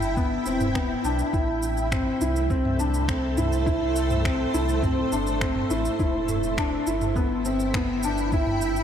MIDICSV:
0, 0, Header, 1, 5, 480
1, 0, Start_track
1, 0, Key_signature, 0, "minor"
1, 0, Tempo, 582524
1, 1102, Time_signature, 4, 2, 24, 8
1, 7278, End_track
2, 0, Start_track
2, 0, Title_t, "Ambient pad"
2, 0, Program_c, 0, 92
2, 0, Note_on_c, 0, 64, 89
2, 0, Note_on_c, 0, 76, 82
2, 0, Note_on_c, 0, 79, 81
2, 0, Note_on_c, 0, 83, 80
2, 1106, Note_on_c, 0, 57, 79
2, 1231, Note_on_c, 0, 69, 82
2, 1629, Note_on_c, 0, 72, 85
2, 2109, Note_off_c, 0, 64, 0
2, 2642, Note_off_c, 0, 79, 0
2, 2644, Note_off_c, 0, 83, 0
2, 4941, Note_off_c, 0, 72, 0
2, 4943, Note_on_c, 0, 64, 84
2, 4944, Note_off_c, 0, 57, 0
2, 5422, Note_on_c, 0, 79, 70
2, 5549, Note_on_c, 0, 83, 88
2, 5866, Note_off_c, 0, 69, 0
2, 7278, Note_off_c, 0, 64, 0
2, 7278, Note_off_c, 0, 76, 0
2, 7278, Note_off_c, 0, 79, 0
2, 7278, Note_off_c, 0, 83, 0
2, 7278, End_track
3, 0, Start_track
3, 0, Title_t, "Felt piano"
3, 0, Program_c, 1, 0
3, 0, Note_on_c, 1, 64, 78
3, 114, Note_off_c, 1, 64, 0
3, 140, Note_on_c, 1, 59, 86
3, 356, Note_off_c, 1, 59, 0
3, 382, Note_on_c, 1, 60, 78
3, 597, Note_off_c, 1, 60, 0
3, 618, Note_on_c, 1, 59, 85
3, 835, Note_off_c, 1, 59, 0
3, 862, Note_on_c, 1, 62, 81
3, 1077, Note_off_c, 1, 62, 0
3, 1101, Note_on_c, 1, 64, 92
3, 1531, Note_off_c, 1, 64, 0
3, 1580, Note_on_c, 1, 60, 84
3, 1796, Note_off_c, 1, 60, 0
3, 1824, Note_on_c, 1, 64, 77
3, 2038, Note_off_c, 1, 64, 0
3, 2063, Note_on_c, 1, 60, 88
3, 2277, Note_off_c, 1, 60, 0
3, 2302, Note_on_c, 1, 62, 74
3, 2517, Note_off_c, 1, 62, 0
3, 2542, Note_on_c, 1, 60, 79
3, 2757, Note_off_c, 1, 60, 0
3, 2781, Note_on_c, 1, 64, 85
3, 2996, Note_off_c, 1, 64, 0
3, 3018, Note_on_c, 1, 64, 102
3, 3450, Note_off_c, 1, 64, 0
3, 3502, Note_on_c, 1, 60, 86
3, 3717, Note_off_c, 1, 60, 0
3, 3741, Note_on_c, 1, 64, 85
3, 3957, Note_off_c, 1, 64, 0
3, 3978, Note_on_c, 1, 60, 89
3, 4195, Note_off_c, 1, 60, 0
3, 4220, Note_on_c, 1, 62, 76
3, 4436, Note_off_c, 1, 62, 0
3, 4463, Note_on_c, 1, 60, 84
3, 4677, Note_off_c, 1, 60, 0
3, 4701, Note_on_c, 1, 64, 79
3, 4916, Note_off_c, 1, 64, 0
3, 4942, Note_on_c, 1, 64, 98
3, 5372, Note_off_c, 1, 64, 0
3, 5423, Note_on_c, 1, 62, 84
3, 5637, Note_off_c, 1, 62, 0
3, 5664, Note_on_c, 1, 64, 84
3, 5878, Note_off_c, 1, 64, 0
3, 5902, Note_on_c, 1, 59, 88
3, 6117, Note_off_c, 1, 59, 0
3, 6144, Note_on_c, 1, 60, 82
3, 6358, Note_off_c, 1, 60, 0
3, 6385, Note_on_c, 1, 59, 88
3, 6598, Note_off_c, 1, 59, 0
3, 6628, Note_on_c, 1, 62, 79
3, 6840, Note_off_c, 1, 62, 0
3, 6867, Note_on_c, 1, 64, 101
3, 7278, Note_off_c, 1, 64, 0
3, 7278, End_track
4, 0, Start_track
4, 0, Title_t, "Sub bass"
4, 0, Program_c, 2, 38
4, 0, Note_on_c, 2, 31, 88
4, 310, Note_off_c, 2, 31, 0
4, 379, Note_on_c, 2, 28, 80
4, 788, Note_off_c, 2, 28, 0
4, 859, Note_on_c, 2, 35, 108
4, 1010, Note_off_c, 2, 35, 0
4, 1099, Note_on_c, 2, 33, 91
4, 1748, Note_off_c, 2, 33, 0
4, 1823, Note_on_c, 2, 36, 90
4, 3670, Note_off_c, 2, 36, 0
4, 3742, Note_on_c, 2, 36, 89
4, 4150, Note_off_c, 2, 36, 0
4, 4220, Note_on_c, 2, 31, 99
4, 4629, Note_off_c, 2, 31, 0
4, 4701, Note_on_c, 2, 33, 94
4, 4851, Note_off_c, 2, 33, 0
4, 4939, Note_on_c, 2, 28, 93
4, 5588, Note_off_c, 2, 28, 0
4, 5660, Note_on_c, 2, 31, 92
4, 7278, Note_off_c, 2, 31, 0
4, 7278, End_track
5, 0, Start_track
5, 0, Title_t, "Drums"
5, 19, Note_on_c, 9, 82, 42
5, 102, Note_off_c, 9, 82, 0
5, 139, Note_on_c, 9, 36, 103
5, 140, Note_on_c, 9, 82, 30
5, 221, Note_off_c, 9, 36, 0
5, 223, Note_off_c, 9, 82, 0
5, 379, Note_on_c, 9, 82, 71
5, 461, Note_off_c, 9, 82, 0
5, 500, Note_on_c, 9, 45, 74
5, 500, Note_on_c, 9, 82, 42
5, 583, Note_off_c, 9, 45, 0
5, 583, Note_off_c, 9, 82, 0
5, 619, Note_on_c, 9, 36, 106
5, 621, Note_on_c, 9, 26, 94
5, 621, Note_on_c, 9, 82, 29
5, 701, Note_off_c, 9, 36, 0
5, 703, Note_off_c, 9, 26, 0
5, 703, Note_off_c, 9, 82, 0
5, 862, Note_on_c, 9, 82, 72
5, 945, Note_off_c, 9, 82, 0
5, 980, Note_on_c, 9, 82, 40
5, 1063, Note_off_c, 9, 82, 0
5, 1099, Note_on_c, 9, 36, 110
5, 1101, Note_on_c, 9, 82, 30
5, 1182, Note_off_c, 9, 36, 0
5, 1183, Note_off_c, 9, 82, 0
5, 1340, Note_on_c, 9, 82, 77
5, 1422, Note_off_c, 9, 82, 0
5, 1461, Note_on_c, 9, 82, 42
5, 1544, Note_off_c, 9, 82, 0
5, 1580, Note_on_c, 9, 36, 104
5, 1583, Note_on_c, 9, 26, 98
5, 1583, Note_on_c, 9, 45, 71
5, 1583, Note_on_c, 9, 82, 34
5, 1662, Note_off_c, 9, 36, 0
5, 1666, Note_off_c, 9, 26, 0
5, 1666, Note_off_c, 9, 45, 0
5, 1666, Note_off_c, 9, 82, 0
5, 1822, Note_on_c, 9, 82, 70
5, 1905, Note_off_c, 9, 82, 0
5, 1946, Note_on_c, 9, 82, 42
5, 2028, Note_off_c, 9, 82, 0
5, 2060, Note_on_c, 9, 36, 104
5, 2063, Note_on_c, 9, 82, 32
5, 2142, Note_off_c, 9, 36, 0
5, 2145, Note_off_c, 9, 82, 0
5, 2185, Note_on_c, 9, 45, 69
5, 2267, Note_off_c, 9, 45, 0
5, 2303, Note_on_c, 9, 82, 77
5, 2386, Note_off_c, 9, 82, 0
5, 2423, Note_on_c, 9, 82, 43
5, 2505, Note_off_c, 9, 82, 0
5, 2540, Note_on_c, 9, 36, 111
5, 2544, Note_on_c, 9, 26, 100
5, 2544, Note_on_c, 9, 82, 31
5, 2622, Note_off_c, 9, 36, 0
5, 2627, Note_off_c, 9, 26, 0
5, 2627, Note_off_c, 9, 82, 0
5, 2782, Note_on_c, 9, 45, 66
5, 2782, Note_on_c, 9, 82, 73
5, 2864, Note_off_c, 9, 45, 0
5, 2864, Note_off_c, 9, 82, 0
5, 2905, Note_on_c, 9, 82, 42
5, 2987, Note_off_c, 9, 82, 0
5, 3020, Note_on_c, 9, 36, 107
5, 3024, Note_on_c, 9, 82, 31
5, 3103, Note_off_c, 9, 36, 0
5, 3106, Note_off_c, 9, 82, 0
5, 3263, Note_on_c, 9, 82, 77
5, 3346, Note_off_c, 9, 82, 0
5, 3382, Note_on_c, 9, 45, 64
5, 3382, Note_on_c, 9, 82, 43
5, 3465, Note_off_c, 9, 45, 0
5, 3465, Note_off_c, 9, 82, 0
5, 3500, Note_on_c, 9, 36, 110
5, 3504, Note_on_c, 9, 26, 104
5, 3504, Note_on_c, 9, 82, 32
5, 3583, Note_off_c, 9, 36, 0
5, 3586, Note_off_c, 9, 26, 0
5, 3586, Note_off_c, 9, 82, 0
5, 3744, Note_on_c, 9, 82, 76
5, 3827, Note_off_c, 9, 82, 0
5, 3864, Note_on_c, 9, 82, 47
5, 3946, Note_off_c, 9, 82, 0
5, 3980, Note_on_c, 9, 36, 104
5, 3982, Note_on_c, 9, 45, 69
5, 3982, Note_on_c, 9, 82, 31
5, 4063, Note_off_c, 9, 36, 0
5, 4064, Note_off_c, 9, 45, 0
5, 4064, Note_off_c, 9, 82, 0
5, 4221, Note_on_c, 9, 82, 78
5, 4304, Note_off_c, 9, 82, 0
5, 4341, Note_on_c, 9, 82, 46
5, 4423, Note_off_c, 9, 82, 0
5, 4460, Note_on_c, 9, 36, 122
5, 4461, Note_on_c, 9, 26, 103
5, 4461, Note_on_c, 9, 82, 34
5, 4542, Note_off_c, 9, 36, 0
5, 4543, Note_off_c, 9, 26, 0
5, 4543, Note_off_c, 9, 82, 0
5, 4578, Note_on_c, 9, 45, 66
5, 4661, Note_off_c, 9, 45, 0
5, 4701, Note_on_c, 9, 82, 74
5, 4783, Note_off_c, 9, 82, 0
5, 4822, Note_on_c, 9, 82, 43
5, 4905, Note_off_c, 9, 82, 0
5, 4939, Note_on_c, 9, 36, 115
5, 4940, Note_on_c, 9, 82, 33
5, 5022, Note_off_c, 9, 36, 0
5, 5022, Note_off_c, 9, 82, 0
5, 5179, Note_on_c, 9, 45, 63
5, 5179, Note_on_c, 9, 82, 76
5, 5261, Note_off_c, 9, 45, 0
5, 5261, Note_off_c, 9, 82, 0
5, 5301, Note_on_c, 9, 82, 44
5, 5383, Note_off_c, 9, 82, 0
5, 5419, Note_on_c, 9, 36, 111
5, 5421, Note_on_c, 9, 26, 101
5, 5421, Note_on_c, 9, 82, 34
5, 5501, Note_off_c, 9, 36, 0
5, 5503, Note_off_c, 9, 26, 0
5, 5503, Note_off_c, 9, 82, 0
5, 5660, Note_on_c, 9, 82, 77
5, 5742, Note_off_c, 9, 82, 0
5, 5780, Note_on_c, 9, 45, 67
5, 5780, Note_on_c, 9, 82, 45
5, 5862, Note_off_c, 9, 45, 0
5, 5862, Note_off_c, 9, 82, 0
5, 5898, Note_on_c, 9, 36, 113
5, 5901, Note_on_c, 9, 82, 31
5, 5981, Note_off_c, 9, 36, 0
5, 5984, Note_off_c, 9, 82, 0
5, 6141, Note_on_c, 9, 82, 73
5, 6223, Note_off_c, 9, 82, 0
5, 6261, Note_on_c, 9, 82, 44
5, 6343, Note_off_c, 9, 82, 0
5, 6378, Note_on_c, 9, 36, 120
5, 6379, Note_on_c, 9, 26, 103
5, 6379, Note_on_c, 9, 45, 64
5, 6379, Note_on_c, 9, 82, 33
5, 6461, Note_off_c, 9, 36, 0
5, 6462, Note_off_c, 9, 26, 0
5, 6462, Note_off_c, 9, 45, 0
5, 6462, Note_off_c, 9, 82, 0
5, 6617, Note_on_c, 9, 82, 82
5, 6699, Note_off_c, 9, 82, 0
5, 6737, Note_on_c, 9, 82, 44
5, 6819, Note_off_c, 9, 82, 0
5, 6857, Note_on_c, 9, 36, 116
5, 6858, Note_on_c, 9, 82, 32
5, 6940, Note_off_c, 9, 36, 0
5, 6940, Note_off_c, 9, 82, 0
5, 6978, Note_on_c, 9, 45, 60
5, 7060, Note_off_c, 9, 45, 0
5, 7099, Note_on_c, 9, 82, 80
5, 7181, Note_off_c, 9, 82, 0
5, 7220, Note_on_c, 9, 82, 43
5, 7278, Note_off_c, 9, 82, 0
5, 7278, End_track
0, 0, End_of_file